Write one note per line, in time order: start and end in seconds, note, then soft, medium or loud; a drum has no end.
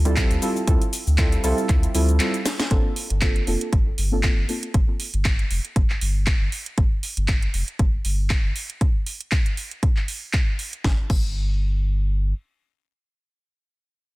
0.00 0.23 D2 loud
0.05 0.14 G3 medium
0.05 0.14 C4 medium
0.05 0.14 E4 medium
0.05 0.14 F4 medium
0.05 0.14 A4 loud
0.05 closed hi-hat soft
0.05 shaker soft
0.16 0.39 G3 medium
0.16 0.39 C4 medium
0.16 0.39 E4 medium
0.16 0.39 F4 medium
0.16 0.40 A4 loud
0.16 kick loud
0.16 clap loud
0.16 closed hi-hat medium
0.16 shaker soft
0.31 0.38 D2 medium
0.31 closed hi-hat medium
0.31 shaker soft
0.42 0.62 G3 medium
0.42 0.62 C4 medium
0.42 0.62 E4 medium
0.42 0.62 F4 medium
0.42 0.63 A4 medium
0.42 open hi-hat medium
0.42 shaker medium
0.56 shaker soft
0.67 0.77 D2 loud
0.67 0.81 G3 medium
0.67 0.81 C4 medium
0.67 0.81 E4 medium
0.67 0.81 F4 medium
0.67 0.81 A4 medium
0.67 kick loud
0.67 closed hi-hat medium
0.67 shaker soft
0.82 closed hi-hat medium
0.82 shaker soft
0.93 open hi-hat loud
0.93 shaker medium
1.07 1.37 D2 loud
1.07 shaker soft
1.18 1.41 G3 medium
1.18 1.41 C4 medium
1.18 1.41 E4 medium
1.18 1.41 F4 medium
1.18 1.41 A4 loud
1.18 kick loud
1.18 clap loud
1.18 closed hi-hat medium
1.18 shaker soft
1.32 closed hi-hat medium
1.32 shaker soft
1.43 1.53 C2 loud
1.43 1.92 G3 loud
1.43 1.92 C4 medium
1.43 1.92 E4 medium
1.43 1.92 F4 medium
1.43 1.92 A4 loud
1.43 open hi-hat medium
1.43 shaker medium
1.58 shaker soft
1.69 1.86 D2 loud
1.69 kick loud
1.69 clap soft
1.69 closed hi-hat medium
1.69 shaker soft
1.83 closed hi-hat medium
1.83 shaker soft
1.94 2.20 D2 loud
1.94 2.17 G3 medium
1.94 2.17 C4 medium
1.94 2.17 E4 medium
1.94 2.17 F4 medium
1.94 2.18 A4 medium
1.94 open hi-hat loud
1.94 shaker medium
2.09 closed hi-hat soft
2.09 shaker soft
2.20 2.33 G3 medium
2.20 2.34 C4 medium
2.20 2.34 E4 medium
2.20 2.34 F4 medium
2.20 2.34 A4 medium
2.20 clap loud
2.20 closed hi-hat medium
2.20 shaker soft
2.34 closed hi-hat medium
2.34 shaker soft
2.46 snare medium
2.46 open hi-hat medium
2.46 shaker medium
2.60 snare loud
2.60 shaker soft
2.70 2.80 G1 loud
2.70 2.91 A#3 medium
2.70 2.91 C4 medium
2.70 2.91 D4 medium
2.70 2.91 F4 medium
2.70 2.91 A4 loud
2.70 kick loud
2.70 closed hi-hat medium
2.96 open hi-hat loud
3.10 3.41 G1 medium
3.10 closed hi-hat medium
3.21 3.42 A#3 medium
3.21 3.42 C4 medium
3.21 3.42 D4 medium
3.21 3.42 F4 medium
3.21 3.42 A4 medium
3.21 kick loud
3.21 clap loud
3.21 closed hi-hat medium
3.36 closed hi-hat medium
3.46 3.56 F1 medium
3.46 4.08 A#3 medium
3.46 4.08 C4 medium
3.46 4.09 D4 medium
3.46 4.09 F4 medium
3.46 4.09 A4 medium
3.46 open hi-hat medium
3.61 closed hi-hat medium
3.73 3.90 G1 loud
3.73 kick loud
3.73 closed hi-hat medium
3.98 4.29 G1 loud
3.98 open hi-hat loud
4.12 4.20 A#3 medium
4.12 4.21 C4 medium
4.12 4.21 D4 medium
4.12 4.21 F4 medium
4.12 4.21 A4 loud
4.23 4.46 A#3 medium
4.23 4.46 C4 medium
4.23 4.46 D4 medium
4.23 4.46 F4 medium
4.23 4.46 A4 loud
4.23 kick loud
4.23 clap loud
4.23 closed hi-hat medium
4.37 4.45 G1 medium
4.48 4.69 A#3 medium
4.48 4.69 C4 medium
4.48 4.69 D4 medium
4.48 4.69 F4 medium
4.48 4.69 A4 medium
4.48 open hi-hat medium
4.63 closed hi-hat medium
4.74 4.83 G1 loud
4.74 kick loud
4.74 closed hi-hat medium
5.00 open hi-hat loud
5.14 5.44 G1 medium
5.14 closed hi-hat medium
5.25 kick loud
5.25 clap loud
5.25 closed hi-hat medium
5.39 closed hi-hat medium
5.50 5.60 F1 medium
5.50 open hi-hat medium
5.65 closed hi-hat medium
5.76 5.93 G1 loud
5.76 kick loud
5.76 closed hi-hat medium
5.90 clap soft
6.01 6.33 G1 loud
6.01 open hi-hat loud
6.27 kick loud
6.27 clap loud
6.27 closed hi-hat medium
6.41 6.48 G1 medium
6.52 open hi-hat medium
6.66 closed hi-hat soft
6.78 6.87 G1 loud
6.78 kick loud
6.78 closed hi-hat medium
7.03 open hi-hat loud
7.17 7.47 G1 medium
7.17 closed hi-hat soft
7.28 kick loud
7.28 clap loud
7.28 closed hi-hat medium
7.42 closed hi-hat soft
7.54 7.63 F1 medium
7.54 open hi-hat medium
7.68 closed hi-hat medium
7.79 7.97 G1 loud
7.79 kick loud
7.79 closed hi-hat medium
8.05 8.36 G1 medium
8.05 open hi-hat loud
8.30 kick loud
8.30 clap loud
8.30 closed hi-hat medium
8.44 8.52 G1 medium
8.56 open hi-hat medium
8.70 closed hi-hat soft
8.81 kick loud
8.81 closed hi-hat medium
9.06 open hi-hat loud
9.21 closed hi-hat soft
9.32 kick loud
9.32 clap loud
9.32 closed hi-hat medium
9.46 closed hi-hat soft
9.57 open hi-hat medium
9.71 closed hi-hat soft
9.83 kick loud
9.83 closed hi-hat medium
9.97 clap soft
10.08 open hi-hat loud
10.33 kick loud
10.33 clap loud
10.33 closed hi-hat medium
10.59 open hi-hat medium
10.73 closed hi-hat soft
10.84 11.00 G1 loud
10.84 kick loud
10.84 snare medium
11.10 12.33 G1 medium
11.10 kick loud
11.10 crash medium